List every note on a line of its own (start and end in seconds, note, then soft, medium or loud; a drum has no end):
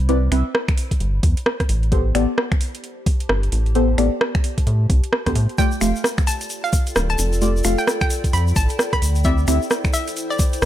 0.00 0.29 C2 medium
0.00 2.49 E4 medium
0.00 6.34 C5 medium
0.00 3.07 D5 medium
0.00 3.40 B5 medium
0.09 0.17 C4 medium
0.09 0.17 E4 medium
0.09 0.17 B4 medium
0.09 0.17 D5 loud
0.09 closed hi-hat medium
0.32 0.43 C2 loud
0.32 0.40 C4 loud
0.32 0.40 E4 medium
0.32 0.40 B4 medium
0.32 0.40 E5 loud
0.32 finger snap medium
0.32 open hi-hat loud
0.55 cross-stick loud
0.68 finger snap medium
0.68 kick loud
0.68 closed hi-hat soft
0.78 open hi-hat loud
0.91 kick medium
0.91 closed hi-hat medium
1.00 1.20 G1 medium
1.00 closed hi-hat medium
1.23 1.35 E2 medium
1.23 kick loud
1.23 open hi-hat loud
1.37 closed hi-hat medium
1.46 cross-stick loud
1.60 kick medium
1.60 cross-stick medium
1.60 closed hi-hat medium
1.69 2.12 A1 medium
1.69 open hi-hat loud
1.83 closed hi-hat soft
1.92 2.00 B3 medium
1.92 2.00 G4 medium
1.92 6.96 G4 medium
1.92 2.00 A4 medium
1.92 2.00 C5 loud
1.92 kick loud
1.92 closed hi-hat medium
2.03 6.51 A5 medium
2.15 2.27 A1 loud
2.15 2.23 B3 loud
2.15 2.23 G4 medium
2.15 2.23 A4 medium
2.15 2.23 D5 loud
2.15 finger snap medium
2.15 open hi-hat loud
2.38 cross-stick loud
2.52 finger snap medium
2.52 kick loud
2.52 closed hi-hat soft
2.61 open hi-hat loud
2.75 closed hi-hat medium
2.84 closed hi-hat medium
3.06 kick loud
3.06 open hi-hat loud
3.20 closed hi-hat medium
3.29 3.49 G1 medium
3.29 cross-stick loud
3.43 closed hi-hat soft
3.52 3.96 A1 medium
3.52 open hi-hat loud
3.66 closed hi-hat soft
3.75 3.84 B3 medium
3.75 3.84 G4 medium
3.75 3.84 A4 medium
3.75 3.84 C5 loud
3.75 closed hi-hat medium
3.98 4.10 A1 loud
3.98 4.07 B3 medium
3.98 4.07 G4 medium
3.98 4.07 A4 medium
3.98 4.07 D5 loud
3.98 finger snap medium
3.98 open hi-hat loud
4.21 cross-stick loud
4.35 finger snap medium
4.35 kick loud
4.35 closed hi-hat soft
4.44 open hi-hat loud
4.58 kick medium
4.58 closed hi-hat medium
4.67 4.87 A2 medium
4.67 closed hi-hat medium
4.90 5.01 C2 medium
4.90 kick loud
4.90 open hi-hat loud
5.04 closed hi-hat medium
5.13 cross-stick loud
5.26 5.34 D2 medium
5.26 5.35 B3 medium
5.26 5.35 G4 medium
5.26 5.35 A4 medium
5.26 5.35 C5 medium
5.26 kick medium
5.26 cross-stick medium
5.26 closed hi-hat medium
5.35 5.47 A2 medium
5.35 open hi-hat loud
5.49 closed hi-hat soft
5.58 5.67 A3 medium
5.58 5.67 F4 medium
5.58 9.02 F4 medium
5.58 5.67 G4 medium
5.58 5.67 D5 loud
5.58 5.76 G5 loud
5.58 kick loud
5.58 closed hi-hat medium
5.58 shaker medium
5.71 shaker soft
5.79 5.93 F1 loud
5.79 5.90 A3 loud
5.79 5.90 F4 medium
5.79 5.90 G4 medium
5.79 10.65 D5 medium
5.79 5.90 F5 loud
5.79 finger snap soft
5.79 open hi-hat loud
5.79 shaker medium
5.86 10.56 A4 medium
5.96 shaker soft
6.04 cross-stick loud
6.04 shaker medium
6.18 finger snap medium
6.18 kick loud
6.18 closed hi-hat soft
6.18 shaker soft
6.23 10.65 G5 medium
6.27 6.44 A5 medium
6.27 open hi-hat loud
6.27 shaker medium
6.41 closed hi-hat medium
6.41 shaker soft
6.50 closed hi-hat medium
6.50 shaker medium
6.64 6.84 F5 medium
6.64 shaker soft
6.73 kick loud
6.73 open hi-hat loud
6.73 shaker medium
6.87 closed hi-hat medium
6.87 shaker soft
6.96 7.16 D1 medium
6.96 cross-stick loud
6.96 shaker soft
7.10 7.24 A5 medium
7.10 closed hi-hat medium
7.10 shaker soft
7.18 7.62 F1 medium
7.18 open hi-hat loud
7.18 shaker loud
7.33 closed hi-hat soft
7.33 shaker soft
7.41 7.50 A3 medium
7.41 7.50 F4 medium
7.41 7.50 G4 medium
7.41 7.50 D5 loud
7.41 closed hi-hat medium
7.41 shaker soft
7.57 shaker soft
7.64 7.76 F1 loud
7.64 7.73 A3 loud
7.64 7.73 F4 medium
7.64 7.73 G4 medium
7.64 7.73 F5 loud
7.64 finger snap soft
7.64 open hi-hat loud
7.64 shaker medium
7.78 7.87 G5 medium
7.78 shaker soft
7.87 cross-stick loud
7.87 shaker medium
8.01 8.15 G5 medium
8.01 finger snap medium
8.01 kick loud
8.01 closed hi-hat soft
8.01 shaker soft
8.10 open hi-hat loud
8.10 shaker medium
8.24 kick medium
8.24 closed hi-hat medium
8.24 shaker soft
8.33 8.53 F2 medium
8.33 8.46 B5 medium
8.33 closed hi-hat medium
8.33 shaker medium
8.47 shaker soft
8.56 8.68 A1 medium
8.56 8.73 A5 medium
8.56 kick loud
8.56 open hi-hat loud
8.56 shaker medium
8.69 closed hi-hat medium
8.69 shaker soft
8.79 cross-stick loud
8.79 shaker soft
8.93 9.07 B5 loud
8.93 kick medium
8.93 cross-stick medium
8.93 closed hi-hat medium
8.93 shaker soft
9.02 9.45 D2 medium
9.02 10.65 E4 medium
9.02 open hi-hat loud
9.02 shaker medium
9.15 closed hi-hat soft
9.15 shaker soft
9.24 9.33 C4 medium
9.24 9.33 E4 medium
9.24 9.33 G4 medium
9.24 10.65 C5 medium
9.24 9.33 D5 loud
9.24 9.42 E5 loud
9.24 kick loud
9.24 closed hi-hat medium
9.24 shaker soft
9.38 shaker soft
9.48 9.59 D2 loud
9.48 9.56 C4 loud
9.48 9.56 E4 medium
9.48 9.56 G4 medium
9.48 9.56 E5 loud
9.48 finger snap soft
9.48 open hi-hat loud
9.48 shaker medium
9.62 shaker soft
9.70 cross-stick loud
9.70 shaker medium
9.84 finger snap medium
9.84 kick loud
9.84 closed hi-hat soft
9.84 shaker soft
9.94 10.11 E5 medium
9.94 open hi-hat loud
9.94 shaker medium
10.08 closed hi-hat medium
10.08 shaker soft
10.17 closed hi-hat medium
10.17 shaker medium
10.30 10.51 D5 medium
10.30 shaker soft
10.39 kick loud
10.39 open hi-hat loud
10.39 shaker medium
10.53 closed hi-hat medium
10.53 shaker soft
10.62 10.65 C2 medium
10.62 cross-stick loud
10.62 shaker medium